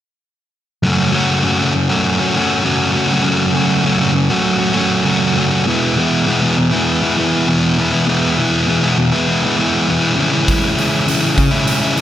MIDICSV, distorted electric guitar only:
0, 0, Header, 1, 3, 480
1, 0, Start_track
1, 0, Key_signature, 3, "minor"
1, 0, Tempo, 602410
1, 667, Time_signature, 4, 2, 24, 8
1, 9570, End_track
2, 0, Start_track
2, 0, Title_t, "Distorted electric guitar"
2, 0, Program_c, 0, 30
2, 660, Note_on_c, 0, 42, 69
2, 667, Note_on_c, 0, 49, 65
2, 669, Note_on_c, 0, 54, 69
2, 675, Note_on_c, 0, 57, 71
2, 683, Note_on_c, 0, 61, 65
2, 683, Note_on_c, 0, 66, 69
2, 890, Note_off_c, 0, 54, 0
2, 894, Note_on_c, 0, 54, 51
2, 905, Note_off_c, 0, 57, 0
2, 908, Note_on_c, 0, 57, 53
2, 912, Note_off_c, 0, 61, 0
2, 915, Note_on_c, 0, 61, 52
2, 919, Note_off_c, 0, 66, 0
2, 922, Note_on_c, 0, 66, 60
2, 1138, Note_off_c, 0, 49, 0
2, 1139, Note_off_c, 0, 42, 0
2, 1142, Note_on_c, 0, 42, 66
2, 1147, Note_on_c, 0, 49, 65
2, 1149, Note_off_c, 0, 54, 0
2, 1152, Note_on_c, 0, 54, 68
2, 1154, Note_off_c, 0, 57, 0
2, 1156, Note_off_c, 0, 61, 0
2, 1158, Note_on_c, 0, 57, 71
2, 1160, Note_on_c, 0, 61, 69
2, 1162, Note_off_c, 0, 66, 0
2, 1165, Note_on_c, 0, 66, 76
2, 1265, Note_off_c, 0, 66, 0
2, 1268, Note_on_c, 0, 66, 61
2, 1270, Note_off_c, 0, 61, 0
2, 1274, Note_on_c, 0, 61, 54
2, 1281, Note_off_c, 0, 57, 0
2, 1283, Note_off_c, 0, 54, 0
2, 1284, Note_on_c, 0, 57, 49
2, 1286, Note_on_c, 0, 54, 44
2, 1390, Note_off_c, 0, 54, 0
2, 1391, Note_off_c, 0, 61, 0
2, 1392, Note_off_c, 0, 57, 0
2, 1393, Note_off_c, 0, 66, 0
2, 1507, Note_on_c, 0, 66, 54
2, 1510, Note_off_c, 0, 49, 0
2, 1511, Note_on_c, 0, 61, 45
2, 1521, Note_on_c, 0, 57, 45
2, 1529, Note_on_c, 0, 54, 42
2, 1736, Note_off_c, 0, 66, 0
2, 1746, Note_on_c, 0, 66, 58
2, 1747, Note_off_c, 0, 61, 0
2, 1754, Note_off_c, 0, 57, 0
2, 1756, Note_on_c, 0, 61, 52
2, 1759, Note_off_c, 0, 54, 0
2, 1764, Note_on_c, 0, 57, 43
2, 1769, Note_on_c, 0, 54, 41
2, 1853, Note_off_c, 0, 54, 0
2, 1863, Note_on_c, 0, 54, 56
2, 1868, Note_off_c, 0, 57, 0
2, 1871, Note_off_c, 0, 61, 0
2, 1877, Note_on_c, 0, 57, 54
2, 1880, Note_off_c, 0, 66, 0
2, 1881, Note_on_c, 0, 61, 61
2, 1890, Note_on_c, 0, 66, 61
2, 2097, Note_off_c, 0, 42, 0
2, 2097, Note_off_c, 0, 54, 0
2, 2100, Note_on_c, 0, 42, 66
2, 2103, Note_on_c, 0, 49, 58
2, 2105, Note_off_c, 0, 57, 0
2, 2107, Note_on_c, 0, 54, 70
2, 2109, Note_off_c, 0, 61, 0
2, 2115, Note_on_c, 0, 57, 74
2, 2117, Note_off_c, 0, 66, 0
2, 2118, Note_on_c, 0, 61, 71
2, 2126, Note_on_c, 0, 66, 68
2, 2334, Note_off_c, 0, 54, 0
2, 2342, Note_off_c, 0, 57, 0
2, 2344, Note_on_c, 0, 54, 49
2, 2350, Note_off_c, 0, 61, 0
2, 2351, Note_on_c, 0, 57, 60
2, 2358, Note_off_c, 0, 66, 0
2, 2359, Note_on_c, 0, 61, 58
2, 2368, Note_on_c, 0, 66, 56
2, 2443, Note_off_c, 0, 66, 0
2, 2452, Note_on_c, 0, 66, 58
2, 2454, Note_off_c, 0, 61, 0
2, 2461, Note_off_c, 0, 57, 0
2, 2464, Note_on_c, 0, 61, 51
2, 2470, Note_off_c, 0, 54, 0
2, 2471, Note_on_c, 0, 57, 47
2, 2479, Note_on_c, 0, 54, 43
2, 2563, Note_off_c, 0, 42, 0
2, 2572, Note_off_c, 0, 49, 0
2, 2573, Note_on_c, 0, 42, 66
2, 2576, Note_off_c, 0, 54, 0
2, 2579, Note_off_c, 0, 57, 0
2, 2582, Note_on_c, 0, 49, 72
2, 2583, Note_off_c, 0, 61, 0
2, 2585, Note_on_c, 0, 54, 67
2, 2589, Note_on_c, 0, 57, 74
2, 2591, Note_off_c, 0, 66, 0
2, 2593, Note_on_c, 0, 61, 67
2, 2601, Note_on_c, 0, 66, 76
2, 2810, Note_off_c, 0, 54, 0
2, 2817, Note_off_c, 0, 57, 0
2, 2819, Note_on_c, 0, 54, 58
2, 2826, Note_off_c, 0, 61, 0
2, 2827, Note_on_c, 0, 57, 60
2, 2834, Note_off_c, 0, 66, 0
2, 2835, Note_on_c, 0, 61, 57
2, 2844, Note_on_c, 0, 66, 55
2, 3047, Note_off_c, 0, 42, 0
2, 3049, Note_off_c, 0, 49, 0
2, 3055, Note_off_c, 0, 54, 0
2, 3056, Note_on_c, 0, 42, 71
2, 3057, Note_off_c, 0, 57, 0
2, 3058, Note_off_c, 0, 61, 0
2, 3058, Note_on_c, 0, 49, 74
2, 3065, Note_on_c, 0, 54, 72
2, 3066, Note_on_c, 0, 57, 79
2, 3067, Note_off_c, 0, 66, 0
2, 3068, Note_on_c, 0, 61, 75
2, 3077, Note_on_c, 0, 66, 68
2, 3169, Note_off_c, 0, 66, 0
2, 3179, Note_on_c, 0, 66, 56
2, 3181, Note_off_c, 0, 61, 0
2, 3191, Note_off_c, 0, 57, 0
2, 3191, Note_on_c, 0, 61, 54
2, 3200, Note_off_c, 0, 54, 0
2, 3201, Note_on_c, 0, 57, 45
2, 3210, Note_on_c, 0, 54, 50
2, 3292, Note_off_c, 0, 54, 0
2, 3294, Note_off_c, 0, 57, 0
2, 3297, Note_off_c, 0, 61, 0
2, 3299, Note_off_c, 0, 66, 0
2, 3423, Note_on_c, 0, 66, 55
2, 3427, Note_off_c, 0, 42, 0
2, 3428, Note_off_c, 0, 49, 0
2, 3430, Note_on_c, 0, 61, 52
2, 3436, Note_on_c, 0, 57, 52
2, 3447, Note_on_c, 0, 54, 46
2, 3646, Note_off_c, 0, 66, 0
2, 3656, Note_on_c, 0, 66, 51
2, 3661, Note_off_c, 0, 61, 0
2, 3667, Note_off_c, 0, 57, 0
2, 3670, Note_off_c, 0, 54, 0
2, 3670, Note_on_c, 0, 61, 49
2, 3676, Note_on_c, 0, 57, 48
2, 3680, Note_on_c, 0, 54, 44
2, 3768, Note_off_c, 0, 54, 0
2, 3775, Note_off_c, 0, 57, 0
2, 3778, Note_on_c, 0, 54, 54
2, 3785, Note_on_c, 0, 57, 57
2, 3786, Note_off_c, 0, 61, 0
2, 3795, Note_off_c, 0, 66, 0
2, 3796, Note_on_c, 0, 61, 63
2, 3804, Note_on_c, 0, 66, 64
2, 4015, Note_on_c, 0, 42, 65
2, 4017, Note_off_c, 0, 54, 0
2, 4017, Note_on_c, 0, 49, 66
2, 4019, Note_off_c, 0, 57, 0
2, 4023, Note_off_c, 0, 61, 0
2, 4027, Note_on_c, 0, 54, 66
2, 4029, Note_on_c, 0, 57, 68
2, 4031, Note_off_c, 0, 66, 0
2, 4032, Note_on_c, 0, 61, 66
2, 4040, Note_on_c, 0, 66, 76
2, 4245, Note_off_c, 0, 54, 0
2, 4254, Note_on_c, 0, 54, 57
2, 4255, Note_off_c, 0, 57, 0
2, 4264, Note_off_c, 0, 61, 0
2, 4264, Note_on_c, 0, 57, 57
2, 4272, Note_off_c, 0, 66, 0
2, 4274, Note_on_c, 0, 61, 63
2, 4282, Note_on_c, 0, 66, 66
2, 4369, Note_off_c, 0, 66, 0
2, 4378, Note_on_c, 0, 66, 55
2, 4379, Note_off_c, 0, 61, 0
2, 4388, Note_off_c, 0, 57, 0
2, 4389, Note_on_c, 0, 61, 55
2, 4392, Note_off_c, 0, 54, 0
2, 4398, Note_on_c, 0, 57, 50
2, 4402, Note_on_c, 0, 54, 45
2, 4492, Note_off_c, 0, 42, 0
2, 4493, Note_off_c, 0, 49, 0
2, 4494, Note_off_c, 0, 66, 0
2, 4499, Note_off_c, 0, 61, 0
2, 4503, Note_off_c, 0, 57, 0
2, 4506, Note_off_c, 0, 54, 0
2, 4513, Note_on_c, 0, 40, 59
2, 4515, Note_on_c, 0, 47, 75
2, 4519, Note_on_c, 0, 52, 62
2, 4525, Note_on_c, 0, 56, 68
2, 4529, Note_on_c, 0, 59, 66
2, 4531, Note_on_c, 0, 64, 72
2, 4751, Note_off_c, 0, 52, 0
2, 4754, Note_on_c, 0, 52, 50
2, 4755, Note_off_c, 0, 56, 0
2, 4758, Note_on_c, 0, 56, 57
2, 4766, Note_off_c, 0, 59, 0
2, 4769, Note_on_c, 0, 59, 55
2, 4771, Note_off_c, 0, 64, 0
2, 4774, Note_on_c, 0, 64, 66
2, 4984, Note_off_c, 0, 40, 0
2, 4986, Note_off_c, 0, 47, 0
2, 4988, Note_on_c, 0, 40, 68
2, 4995, Note_on_c, 0, 47, 75
2, 4997, Note_off_c, 0, 52, 0
2, 5000, Note_on_c, 0, 52, 68
2, 5002, Note_off_c, 0, 56, 0
2, 5003, Note_off_c, 0, 59, 0
2, 5005, Note_on_c, 0, 56, 76
2, 5006, Note_on_c, 0, 59, 75
2, 5014, Note_off_c, 0, 64, 0
2, 5017, Note_on_c, 0, 64, 72
2, 5105, Note_off_c, 0, 64, 0
2, 5108, Note_on_c, 0, 64, 52
2, 5109, Note_off_c, 0, 59, 0
2, 5117, Note_off_c, 0, 56, 0
2, 5119, Note_on_c, 0, 59, 57
2, 5121, Note_on_c, 0, 56, 49
2, 5128, Note_off_c, 0, 52, 0
2, 5132, Note_on_c, 0, 52, 48
2, 5232, Note_off_c, 0, 59, 0
2, 5234, Note_off_c, 0, 56, 0
2, 5238, Note_off_c, 0, 52, 0
2, 5241, Note_off_c, 0, 64, 0
2, 5347, Note_on_c, 0, 64, 55
2, 5353, Note_off_c, 0, 40, 0
2, 5357, Note_off_c, 0, 47, 0
2, 5362, Note_on_c, 0, 59, 55
2, 5368, Note_on_c, 0, 56, 45
2, 5372, Note_on_c, 0, 52, 47
2, 5590, Note_off_c, 0, 64, 0
2, 5592, Note_off_c, 0, 59, 0
2, 5593, Note_on_c, 0, 64, 55
2, 5602, Note_on_c, 0, 59, 54
2, 5607, Note_off_c, 0, 56, 0
2, 5610, Note_on_c, 0, 56, 47
2, 5612, Note_off_c, 0, 52, 0
2, 5615, Note_on_c, 0, 52, 48
2, 5710, Note_off_c, 0, 52, 0
2, 5713, Note_on_c, 0, 52, 62
2, 5720, Note_off_c, 0, 56, 0
2, 5723, Note_off_c, 0, 59, 0
2, 5723, Note_on_c, 0, 56, 54
2, 5729, Note_off_c, 0, 64, 0
2, 5732, Note_on_c, 0, 64, 63
2, 5733, Note_on_c, 0, 59, 58
2, 5949, Note_on_c, 0, 40, 66
2, 5955, Note_on_c, 0, 47, 69
2, 5960, Note_off_c, 0, 52, 0
2, 5961, Note_off_c, 0, 59, 0
2, 5963, Note_off_c, 0, 56, 0
2, 5964, Note_on_c, 0, 52, 75
2, 5966, Note_on_c, 0, 56, 72
2, 5970, Note_on_c, 0, 59, 66
2, 5974, Note_off_c, 0, 64, 0
2, 5978, Note_on_c, 0, 64, 73
2, 6190, Note_off_c, 0, 52, 0
2, 6193, Note_on_c, 0, 52, 56
2, 6198, Note_off_c, 0, 59, 0
2, 6199, Note_off_c, 0, 56, 0
2, 6202, Note_on_c, 0, 56, 55
2, 6208, Note_on_c, 0, 59, 61
2, 6212, Note_off_c, 0, 64, 0
2, 6215, Note_on_c, 0, 64, 61
2, 6307, Note_off_c, 0, 64, 0
2, 6310, Note_on_c, 0, 64, 58
2, 6312, Note_off_c, 0, 59, 0
2, 6320, Note_off_c, 0, 56, 0
2, 6321, Note_on_c, 0, 59, 57
2, 6323, Note_on_c, 0, 56, 49
2, 6329, Note_off_c, 0, 52, 0
2, 6332, Note_on_c, 0, 52, 51
2, 6414, Note_off_c, 0, 40, 0
2, 6421, Note_off_c, 0, 47, 0
2, 6424, Note_on_c, 0, 40, 67
2, 6431, Note_on_c, 0, 47, 69
2, 6433, Note_off_c, 0, 56, 0
2, 6434, Note_off_c, 0, 52, 0
2, 6435, Note_off_c, 0, 59, 0
2, 6436, Note_on_c, 0, 56, 69
2, 6437, Note_on_c, 0, 52, 77
2, 6445, Note_off_c, 0, 64, 0
2, 6445, Note_on_c, 0, 59, 77
2, 6448, Note_on_c, 0, 64, 75
2, 6672, Note_off_c, 0, 52, 0
2, 6676, Note_on_c, 0, 52, 55
2, 6680, Note_off_c, 0, 56, 0
2, 6680, Note_off_c, 0, 59, 0
2, 6683, Note_on_c, 0, 56, 53
2, 6689, Note_off_c, 0, 64, 0
2, 6690, Note_on_c, 0, 59, 62
2, 6692, Note_on_c, 0, 64, 62
2, 6896, Note_off_c, 0, 40, 0
2, 6899, Note_off_c, 0, 47, 0
2, 6906, Note_on_c, 0, 40, 66
2, 6909, Note_on_c, 0, 47, 66
2, 6912, Note_off_c, 0, 52, 0
2, 6916, Note_on_c, 0, 52, 74
2, 6917, Note_off_c, 0, 56, 0
2, 6917, Note_off_c, 0, 59, 0
2, 6921, Note_on_c, 0, 56, 69
2, 6926, Note_off_c, 0, 64, 0
2, 6927, Note_on_c, 0, 59, 70
2, 6929, Note_on_c, 0, 64, 75
2, 7028, Note_off_c, 0, 59, 0
2, 7028, Note_off_c, 0, 64, 0
2, 7031, Note_on_c, 0, 64, 60
2, 7037, Note_on_c, 0, 59, 53
2, 7044, Note_off_c, 0, 56, 0
2, 7047, Note_on_c, 0, 56, 49
2, 7053, Note_off_c, 0, 52, 0
2, 7056, Note_on_c, 0, 52, 47
2, 7152, Note_off_c, 0, 59, 0
2, 7154, Note_off_c, 0, 52, 0
2, 7154, Note_off_c, 0, 56, 0
2, 7159, Note_off_c, 0, 64, 0
2, 7264, Note_on_c, 0, 64, 55
2, 7270, Note_off_c, 0, 40, 0
2, 7271, Note_off_c, 0, 47, 0
2, 7274, Note_on_c, 0, 59, 50
2, 7280, Note_on_c, 0, 56, 45
2, 7289, Note_on_c, 0, 52, 41
2, 7512, Note_off_c, 0, 64, 0
2, 7514, Note_off_c, 0, 59, 0
2, 7515, Note_on_c, 0, 64, 50
2, 7523, Note_on_c, 0, 59, 54
2, 7525, Note_off_c, 0, 56, 0
2, 7528, Note_on_c, 0, 56, 51
2, 7536, Note_off_c, 0, 52, 0
2, 7540, Note_on_c, 0, 52, 38
2, 7619, Note_off_c, 0, 52, 0
2, 7623, Note_on_c, 0, 52, 58
2, 7627, Note_off_c, 0, 59, 0
2, 7628, Note_off_c, 0, 56, 0
2, 7632, Note_on_c, 0, 56, 59
2, 7636, Note_on_c, 0, 59, 59
2, 7644, Note_off_c, 0, 64, 0
2, 7647, Note_on_c, 0, 64, 62
2, 7868, Note_on_c, 0, 40, 67
2, 7873, Note_on_c, 0, 47, 59
2, 7879, Note_off_c, 0, 52, 0
2, 7881, Note_off_c, 0, 59, 0
2, 7882, Note_on_c, 0, 52, 59
2, 7883, Note_off_c, 0, 56, 0
2, 7886, Note_off_c, 0, 64, 0
2, 7886, Note_on_c, 0, 56, 68
2, 7890, Note_on_c, 0, 59, 73
2, 7890, Note_on_c, 0, 64, 73
2, 8090, Note_off_c, 0, 47, 0
2, 8093, Note_on_c, 0, 49, 68
2, 8095, Note_off_c, 0, 40, 0
2, 8100, Note_off_c, 0, 52, 0
2, 8103, Note_on_c, 0, 52, 73
2, 8106, Note_off_c, 0, 59, 0
2, 8108, Note_off_c, 0, 56, 0
2, 8111, Note_on_c, 0, 56, 72
2, 8113, Note_on_c, 0, 61, 78
2, 8119, Note_off_c, 0, 64, 0
2, 8123, Note_on_c, 0, 64, 75
2, 8218, Note_off_c, 0, 64, 0
2, 8221, Note_on_c, 0, 64, 55
2, 8229, Note_off_c, 0, 61, 0
2, 8232, Note_on_c, 0, 61, 49
2, 8235, Note_off_c, 0, 56, 0
2, 8238, Note_on_c, 0, 56, 47
2, 8337, Note_off_c, 0, 49, 0
2, 8341, Note_on_c, 0, 49, 66
2, 8346, Note_off_c, 0, 52, 0
2, 8349, Note_on_c, 0, 52, 62
2, 8350, Note_off_c, 0, 56, 0
2, 8354, Note_off_c, 0, 61, 0
2, 8354, Note_on_c, 0, 56, 65
2, 8357, Note_on_c, 0, 61, 65
2, 8363, Note_off_c, 0, 64, 0
2, 8366, Note_on_c, 0, 64, 79
2, 8584, Note_off_c, 0, 52, 0
2, 8587, Note_on_c, 0, 52, 58
2, 8592, Note_off_c, 0, 56, 0
2, 8595, Note_on_c, 0, 56, 56
2, 8597, Note_off_c, 0, 61, 0
2, 8600, Note_on_c, 0, 61, 54
2, 8606, Note_off_c, 0, 64, 0
2, 8609, Note_on_c, 0, 64, 60
2, 8819, Note_off_c, 0, 49, 0
2, 8822, Note_on_c, 0, 49, 72
2, 8826, Note_off_c, 0, 52, 0
2, 8826, Note_off_c, 0, 56, 0
2, 8829, Note_on_c, 0, 52, 73
2, 8830, Note_on_c, 0, 56, 70
2, 8836, Note_off_c, 0, 61, 0
2, 8840, Note_off_c, 0, 64, 0
2, 8840, Note_on_c, 0, 61, 81
2, 8843, Note_on_c, 0, 64, 72
2, 8934, Note_off_c, 0, 64, 0
2, 8938, Note_on_c, 0, 64, 59
2, 8944, Note_off_c, 0, 61, 0
2, 8947, Note_on_c, 0, 61, 49
2, 8954, Note_off_c, 0, 56, 0
2, 8957, Note_on_c, 0, 56, 47
2, 9055, Note_off_c, 0, 52, 0
2, 9059, Note_off_c, 0, 56, 0
2, 9059, Note_off_c, 0, 61, 0
2, 9063, Note_off_c, 0, 64, 0
2, 9172, Note_on_c, 0, 64, 57
2, 9186, Note_on_c, 0, 61, 49
2, 9192, Note_on_c, 0, 56, 41
2, 9409, Note_off_c, 0, 64, 0
2, 9412, Note_on_c, 0, 64, 53
2, 9427, Note_off_c, 0, 61, 0
2, 9430, Note_on_c, 0, 61, 50
2, 9437, Note_off_c, 0, 56, 0
2, 9440, Note_on_c, 0, 56, 47
2, 9535, Note_on_c, 0, 52, 61
2, 9538, Note_off_c, 0, 56, 0
2, 9542, Note_on_c, 0, 56, 59
2, 9549, Note_off_c, 0, 61, 0
2, 9554, Note_off_c, 0, 64, 0
2, 9570, Note_off_c, 0, 49, 0
2, 9570, Note_off_c, 0, 52, 0
2, 9570, Note_off_c, 0, 56, 0
2, 9570, End_track
3, 0, Start_track
3, 0, Title_t, "Muted distorted electric guitar strokes"
3, 1393, Note_on_c, 9, 29, 35
3, 1473, Note_off_c, 9, 29, 0
3, 3301, Note_on_c, 9, 29, 33
3, 3381, Note_off_c, 9, 29, 0
3, 5238, Note_on_c, 9, 29, 34
3, 5317, Note_off_c, 9, 29, 0
3, 7157, Note_on_c, 9, 29, 32
3, 7236, Note_off_c, 9, 29, 0
3, 9059, Note_on_c, 9, 29, 33
3, 9138, Note_off_c, 9, 29, 0
3, 9570, End_track
0, 0, End_of_file